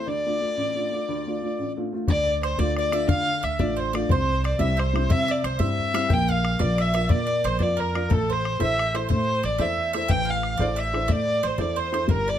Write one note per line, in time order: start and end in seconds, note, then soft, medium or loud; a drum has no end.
0.07 0.40 D2 medium
0.07 1.73 D5 medium
0.07 1.77 D5 loud
0.25 0.40 A3 soft
0.25 0.40 D4 soft
0.25 0.40 F4 soft
0.41 0.69 A3 soft
0.41 0.69 D4 soft
0.41 0.69 F4 soft
0.57 0.91 A1 medium
0.75 0.90 A3 soft
0.75 0.91 D4 soft
0.75 0.92 F4 soft
0.92 1.19 A3 soft
0.92 1.20 D4 soft
0.92 1.20 F4 soft
1.08 1.42 D2 medium
1.27 1.41 A3 soft
1.27 1.42 D4 soft
1.27 1.42 F4 medium
1.42 1.70 A3 soft
1.42 1.70 D4 soft
1.42 1.70 F4 soft
1.59 1.92 A1 medium
1.77 1.91 A3 medium
1.77 1.91 D4 soft
1.77 1.92 F4 medium
1.93 2.05 A3 medium
1.93 2.05 D4 soft
1.93 2.06 F4 medium
2.08 2.55 D2 loud
2.08 3.07 D3 medium
2.08 2.40 D5 medium
2.08 2.40 D5 loud
2.08 2.41 D5 loud
2.08 bodhran medium
2.18 bodhran soft
2.27 bodhran soft
2.43 2.58 C5 medium
2.43 2.61 C5 loud
2.43 bodhran medium
2.59 3.05 D2 loud
2.59 2.91 A3 medium
2.59 2.90 D4 soft
2.59 2.91 F4 medium
2.59 2.77 D5 medium
2.59 2.76 D5 medium
2.59 2.78 D5 loud
2.59 bodhran medium
2.77 3.10 D5 medium
2.77 2.94 D5 medium
2.77 3.08 D5 loud
2.77 bodhran medium
2.92 3.26 A3 medium
2.92 3.26 D4 soft
2.92 3.26 F4 soft
2.92 3.08 E5 medium
2.92 bodhran medium
3.08 4.06 D3 medium
3.08 3.40 D3 medium
3.08 3.42 F5 medium
3.08 3.41 F5 medium
3.08 3.45 F5 loud
3.08 bodhran medium
3.43 3.58 D2 medium
3.43 3.59 E5 medium
3.43 3.58 E5 medium
3.43 3.62 E5 loud
3.43 bodhran medium
3.59 4.05 A1 medium
3.59 3.92 A3 medium
3.59 3.93 D4 medium
3.59 3.93 F4 medium
3.59 3.78 D5 medium
3.59 3.76 D5 medium
3.59 3.82 D5 medium
3.59 bodhran medium
3.76 3.92 C5 medium
3.76 3.94 C5 medium
3.76 3.96 C5 medium
3.76 bodhran soft
3.93 4.09 A3 medium
3.93 4.09 D4 soft
3.93 4.09 F4 medium
3.93 4.08 D5 medium
3.93 4.13 D5 medium
3.93 bodhran medium
4.09 4.55 C2 loud
4.09 5.08 C3 medium
4.09 4.56 C5 medium
4.09 4.44 C5 medium
4.09 4.45 C5 loud
4.09 bodhran medium
4.20 bodhran soft
4.30 bodhran soft
4.44 4.59 D5 medium
4.44 4.62 D5 medium
4.44 bodhran medium
4.59 5.05 C2 loud
4.59 4.92 G3 medium
4.59 4.92 C4 medium
4.59 4.93 E4 medium
4.59 4.78 E5 medium
4.59 4.77 E5 medium
4.59 4.81 E5 loud
4.59 bodhran medium
4.77 5.07 C5 medium
4.77 5.13 C5 loud
4.77 bodhran medium
4.93 5.27 G3 soft
4.93 5.27 C4 soft
4.93 5.27 E4 medium
4.93 bodhran medium
5.09 5.41 C3 loud
5.09 6.07 C3 medium
5.09 5.41 E5 medium
5.09 5.29 E5 medium
5.09 5.33 E5 loud
5.09 bodhran loud
5.28 5.43 D5 medium
5.28 5.48 D5 loud
5.44 5.58 C2 medium
5.44 5.60 C5 medium
5.44 5.59 C5 medium
5.44 5.63 C5 medium
5.44 bodhran medium
5.59 6.06 G2 medium
5.59 5.92 G3 medium
5.59 5.92 C4 medium
5.59 5.93 E4 medium
5.59 6.11 E5 medium
5.59 5.91 E5 medium
5.59 6.15 E5 loud
5.59 bodhran medium
5.79 bodhran soft
5.94 6.09 G3 medium
5.94 6.09 C4 medium
5.94 6.10 E4 medium
5.94 6.09 F5 medium
5.94 bodhran medium
6.09 6.56 A#1 loud
6.09 7.08 A#3 medium
6.09 6.29 G5 loud
6.09 6.27 G5 medium
6.09 bodhran loud
6.14 6.32 G5 loud
6.20 bodhran soft
6.28 6.61 F5 medium
6.28 6.58 F5 medium
6.28 6.61 F5 loud
6.28 bodhran soft
6.45 bodhran medium
6.59 7.06 A#1 loud
6.59 6.93 F4 medium
6.59 6.93 A#4 medium
6.59 6.77 D5 medium
6.59 6.93 D5 medium
6.59 6.83 D5 loud
6.59 bodhran medium
6.78 6.93 E5 medium
6.78 7.11 E5 loud
6.78 bodhran medium
6.94 7.28 F4 soft
6.94 7.27 A#4 soft
6.94 7.28 D5 medium
6.94 7.09 E5 medium
6.94 bodhran medium
7.09 7.42 A#2 loud
7.09 8.07 A#3 medium
7.09 7.25 D5 medium
7.09 7.42 D5 medium
7.09 7.49 D5 loud
7.09 bodhran loud
7.27 7.44 D5 medium
7.44 7.59 A#1 medium
7.44 7.60 C5 medium
7.44 7.58 C5 medium
7.44 7.64 C5 loud
7.44 bodhran medium
7.59 8.06 F2 medium
7.59 7.93 F4 medium
7.59 7.94 A#4 medium
7.59 7.76 D5 medium
7.59 7.77 D5 medium
7.59 7.94 D5 medium
7.59 7.82 D5 loud
7.59 bodhran medium
7.77 8.07 A#4 medium
7.77 8.12 A#4 medium
7.77 8.15 A#4 loud
7.77 bodhran soft
7.94 8.09 F4 medium
7.94 8.10 A#4 soft
7.94 8.10 D5 medium
7.94 bodhran medium
8.10 8.56 A1 loud
8.10 9.09 A3 medium
8.10 8.27 A4 medium
8.10 8.30 A4 medium
8.10 8.34 A4 loud
8.10 bodhran loud
8.29 8.61 C5 medium
8.29 8.62 C5 loud
8.29 bodhran soft
8.45 bodhran medium
8.59 9.06 A1 medium
8.59 8.93 E4 medium
8.59 8.93 A4 medium
8.59 8.93 C5 medium
8.59 8.92 E5 medium
8.59 8.96 E5 medium
8.59 8.98 E5 loud
8.59 bodhran medium
8.79 bodhran medium
8.94 9.27 E4 medium
8.94 9.27 A4 soft
8.94 9.08 C5 medium
8.94 9.28 C5 medium
8.94 9.08 C5 medium
8.94 9.11 C5 medium
8.94 bodhran medium
9.09 9.42 A2 loud
9.09 11.05 A3 medium
9.09 9.41 C5 medium
9.09 9.45 C5 medium
9.09 9.47 C5 loud
9.09 bodhran medium
9.43 9.58 A1 medium
9.43 9.60 D5 medium
9.43 9.59 D5 medium
9.43 9.63 D5 loud
9.43 bodhran soft
9.58 10.05 E2 medium
9.58 9.93 E4 medium
9.58 9.93 A4 medium
9.58 9.93 C5 medium
9.58 9.91 E5 medium
9.58 9.94 E5 medium
9.58 9.95 E5 loud
9.58 bodhran medium
9.78 bodhran soft
9.93 10.27 E4 medium
9.93 10.28 A4 soft
9.93 10.28 C5 medium
9.93 10.08 E5 medium
9.93 10.11 E5 medium
9.93 10.12 E5 loud
9.93 bodhran medium
10.08 10.55 A1 loud
10.08 12.04 E3 medium
10.08 10.24 G5 loud
10.08 10.29 G5 loud
10.08 10.32 G5 loud
10.08 bodhran medium
10.19 bodhran soft
10.25 10.56 F5 medium
10.25 bodhran soft
10.29 10.61 F5 medium
10.29 10.63 F5 loud
10.43 bodhran medium
10.57 11.05 A1 loud
10.57 10.92 E4 medium
10.57 10.92 A4 medium
10.57 10.92 C5 medium
10.57 10.76 D5 medium
10.57 10.79 D5 medium
10.57 bodhran medium
10.61 10.81 D5 loud
10.76 11.06 E5 medium
10.76 11.10 E5 medium
10.76 11.13 E5 loud
10.76 bodhran soft
10.93 11.27 E4 medium
10.93 11.27 A4 soft
10.93 11.27 C5 medium
10.93 bodhran medium
11.08 11.40 A2 loud
11.08 12.05 A3 medium
11.08 11.40 D5 medium
11.08 11.37 D5 loud
11.08 11.48 D5 loud
11.08 bodhran medium
11.43 11.58 A1 medium
11.43 11.58 C5 medium
11.43 11.60 C5 medium
11.43 11.63 C5 loud
11.43 bodhran medium
11.58 12.04 E2 medium
11.58 11.90 E4 medium
11.58 11.91 A4 soft
11.58 11.91 C5 medium
11.58 11.76 D5 medium
11.58 11.82 D5 loud
11.58 bodhran medium
11.76 11.91 C5 medium
11.76 12.07 C5 medium
11.76 12.12 C5 loud
11.76 bodhran soft
11.92 12.08 E4 medium
11.92 12.08 A4 soft
11.92 12.08 C5 medium
11.92 bodhran medium
12.08 12.39 G1 loud
12.08 12.39 G3 medium
12.08 12.26 A#4 medium
12.08 12.28 A#4 medium
12.08 12.31 A#4 loud
12.08 bodhran medium
12.19 bodhran soft
12.27 12.39 D5 medium
12.27 12.39 D5 loud
12.27 bodhran soft